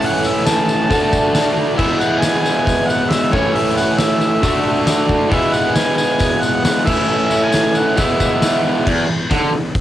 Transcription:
0.00 0.88 A2 medium
0.00 0.88 E3 medium
0.00 0.89 A3 medium
0.00 0.89 C#4 loud
0.00 0.90 E4 loud
0.00 open hi-hat medium
0.00 tambourine soft
0.06 0.29 F#5 loud
0.24 0.49 E5 medium
0.24 tambourine medium
0.47 1.57 A5 loud
0.47 snare loud
0.47 open hi-hat medium
0.47 tambourine loud
0.69 tambourine medium
0.89 1.76 D3 medium
0.89 1.77 A3 loud
0.89 1.78 D4 loud
0.89 1.78 F#4 loud
0.89 kick loud
0.89 open hi-hat medium
0.89 tambourine medium
1.13 kick medium
1.13 tambourine medium
1.35 snare loud
1.35 open hi-hat medium
1.35 tambourine loud
1.57 tambourine soft
1.76 3.30 E3 loud
1.76 3.31 G#3 medium
1.76 3.32 B3 loud
1.76 3.32 E4 loud
1.76 2.01 E5 loud
1.76 kick loud
1.76 crash loud
1.76 tambourine soft
1.99 2.22 F#5 loud
1.99 tambourine medium
2.20 2.42 G#5 loud
2.20 snare loud
2.20 open hi-hat medium
2.20 tambourine loud
2.42 2.89 G#5 loud
2.42 tambourine medium
2.67 kick loud
2.67 open hi-hat medium
2.67 tambourine medium
2.88 3.11 F#5 loud
2.88 tambourine medium
3.10 3.34 E5 loud
3.10 snare loud
3.10 open hi-hat medium
3.10 tambourine medium
3.32 4.41 A2 medium
3.32 4.42 E3 loud
3.32 4.42 A3 loud
3.32 4.43 C#4 loud
3.32 3.56 C#5 loud
3.32 kick loud
3.32 tambourine soft
3.36 4.43 E4 loud
3.55 3.76 E5 loud
3.55 open hi-hat medium
3.55 tambourine soft
3.77 4.00 F#5 medium
3.77 tambourine medium
3.98 5.09 E5 medium
3.98 snare loud
3.98 open hi-hat medium
3.98 tambourine loud
4.21 tambourine medium
4.42 5.28 D3 loud
4.42 5.30 A3 loud
4.42 5.31 D4 loud
4.42 5.32 F#4 loud
4.42 kick loud
4.42 open hi-hat medium
4.42 tambourine medium
4.87 snare loud
4.87 open hi-hat medium
4.87 tambourine loud
5.09 kick medium
5.09 tambourine soft
5.29 6.86 E3 loud
5.29 6.85 G#3 loud
5.29 6.85 B3 loud
5.29 5.55 E5 loud
5.29 kick loud
5.29 open hi-hat medium
5.29 tambourine soft
5.33 6.89 E4 loud
5.54 5.77 F#5 loud
5.54 tambourine medium
5.75 5.97 G#5 loud
5.75 snare loud
5.75 open hi-hat medium
5.75 tambourine loud
5.98 6.43 G#5 loud
5.98 tambourine medium
6.19 kick loud
6.19 open hi-hat medium
6.19 tambourine medium
6.42 6.88 F#5 loud
6.42 tambourine medium
6.65 snare loud
6.65 open hi-hat medium
6.65 tambourine loud
6.85 7.95 A2 loud
6.85 7.95 E3 medium
6.85 7.96 A3 loud
6.85 7.97 C#4 loud
6.85 7.97 E4 loud
6.85 7.42 E5 loud
6.85 kick loud
6.85 tambourine soft
6.85 crash loud
7.09 tambourine soft
7.31 tambourine medium
7.44 7.79 G#5 loud
7.52 snare loud
7.52 open hi-hat medium
7.52 tambourine loud
7.75 8.01 F#5 medium
7.75 tambourine medium
7.97 8.84 E3 medium
7.97 8.85 G#3 loud
7.97 8.86 B3 loud
7.97 8.65 E5 medium
7.97 kick loud
7.97 open hi-hat medium
7.97 tambourine medium
8.01 8.86 E4 loud
8.20 kick medium
8.20 tambourine medium
8.42 snare loud
8.42 open hi-hat medium
8.42 tambourine loud
8.65 tambourine soft
8.86 9.06 E2 loud
8.86 kick loud
8.86 crash loud
9.08 9.26 E2 medium
9.31 9.52 D3 loud
9.31 kick loud
9.31 snare loud
9.31 open hi-hat medium
9.53 9.70 E2 medium
9.75 kick loud
9.75 open hi-hat medium

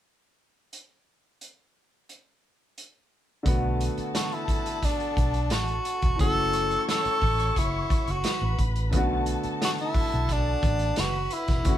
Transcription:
0.73 closed hi-hat medium
1.41 closed hi-hat medium
2.09 closed hi-hat soft
2.78 closed hi-hat medium
3.43 3.88 B1 loud
3.43 6.14 D3 medium
3.43 6.14 A3 medium
3.43 6.16 B3 medium
3.43 6.15 A4 medium
3.43 6.15 A5 medium
3.43 kick loud
3.43 closed hi-hat medium
3.48 6.16 F#4 medium
3.81 closed hi-hat medium
3.97 muted fingered electric bass stroke soft
3.97 closed hi-hat soft
4.15 4.35 F#4 medium
4.15 snare loud
4.15 closed hi-hat loud
4.32 4.86 E4 medium
4.32 closed hi-hat soft
4.48 kick medium
4.48 closed hi-hat medium
4.66 closed hi-hat soft
4.82 5.54 D4 medium
4.82 kick medium
4.82 snare soft
4.82 closed hi-hat medium
5.00 closed hi-hat soft
5.17 5.50 B1 medium
5.17 kick medium
5.17 closed hi-hat medium
5.34 closed hi-hat soft
5.50 5.78 A1 medium
5.50 6.20 F#4 medium
5.50 snare loud
5.50 closed hi-hat medium
5.68 closed hi-hat soft
5.85 closed hi-hat medium
6.02 6.17 E1 medium
6.02 kick medium
6.02 closed hi-hat soft
6.16 6.75 F#1 medium
6.16 8.87 E3 medium
6.16 8.88 A3 medium
6.16 8.89 C#4 medium
6.16 8.20 C#5 medium
6.16 8.20 C#6 medium
6.16 kick loud
6.16 closed hi-hat medium
6.21 8.90 F#4 medium
6.21 6.84 A4 loud
6.53 closed hi-hat medium
6.71 closed hi-hat soft
6.89 7.60 A4 medium
6.89 snare medium
6.89 closed hi-hat medium
7.05 muted fingered electric bass stroke soft
7.05 closed hi-hat soft
7.22 7.49 A1 medium
7.22 kick medium
7.22 open hi-hat soft
7.39 closed hi-hat soft
7.56 7.84 F#1 medium
7.56 8.13 E4 medium
7.56 kick medium
7.56 closed hi-hat medium
7.90 kick medium
7.90 closed hi-hat medium
8.08 8.21 F#1 medium
8.08 8.60 F#4 medium
8.08 closed hi-hat soft
8.24 8.91 B4 medium
8.24 8.91 B5 medium
8.24 snare medium
8.24 closed hi-hat medium
8.42 8.55 A1 medium
8.59 8.93 A1 medium
8.59 kick medium
8.59 closed hi-hat medium
8.76 closed hi-hat soft
8.91 9.34 B1 loud
8.91 8.98 C#3 medium
8.91 11.61 A3 medium
8.91 11.62 B3 medium
8.91 10.93 A4 medium
8.91 10.93 A5 medium
8.91 kick loud
8.91 closed hi-hat medium
8.96 11.64 D3 medium
8.96 11.63 F#4 medium
9.26 closed hi-hat medium
9.43 muted fingered electric bass stroke soft
9.43 closed hi-hat soft
9.62 9.71 F#4 medium
9.62 snare medium
9.62 closed hi-hat loud
9.78 10.34 E4 medium
9.78 closed hi-hat soft
9.94 muted fingered electric bass stroke soft
9.94 kick medium
9.94 open hi-hat soft
10.12 10.54 B1 medium
10.12 closed hi-hat soft
10.29 11.01 D4 medium
10.29 kick medium
10.29 snare soft
10.29 closed hi-hat medium
10.63 10.91 A1 medium
10.63 kick loud
10.63 closed hi-hat medium
10.79 closed hi-hat soft
10.96 11.26 F#1 medium
10.96 11.35 F#4 medium
10.96 11.64 B4 medium
10.96 11.64 B5 medium
10.96 snare medium
10.96 closed hi-hat loud
11.31 11.78 E4 medium
11.31 closed hi-hat medium
11.48 11.62 E1 medium
11.48 kick medium
11.48 snare soft
11.48 closed hi-hat soft
11.63 11.78 F#1 medium
11.63 11.78 E3 medium
11.63 11.78 A3 medium
11.63 11.78 C#4 medium
11.63 11.78 C#5 medium
11.63 11.78 C#6 medium
11.63 kick loud
11.63 closed hi-hat medium
11.69 11.78 F#4 medium

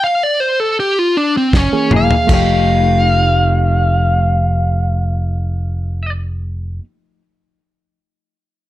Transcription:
0.04 0.23 F5 medium
0.23 0.40 D5 medium
0.40 0.60 C5 medium
0.60 0.77 A4 medium
0.80 0.99 G4 medium
0.99 1.16 F4 medium
1.17 1.35 D4 medium
1.37 1.56 C4 medium
1.53 1.71 F#1 medium
1.53 1.92 C#4 loud
1.53 kick medium
1.53 snare medium
1.72 2.29 E3 medium
1.72 2.29 A#3 medium
1.72 2.29 G#4 medium
1.72 muted fingered electric bass stroke soft
1.91 2.08 E1 medium
1.91 2.14 F#3 medium
1.91 2.15 A#3 medium
1.91 2.15 E4 medium
1.91 2.15 G#4 medium
1.91 mid tom medium
1.96 2.31 F5 medium
2.11 floor tom medium
2.27 6.79 F1 loud
2.27 6.82 F3 medium
2.27 6.78 A3 medium
2.27 6.84 A3 medium
2.27 6.79 D#4 medium
2.27 kick loud
2.27 crash medium
2.31 6.84 D#4 medium
2.31 6.80 G4 medium
2.31 6.85 G4 medium
2.31 6.12 F5 loud

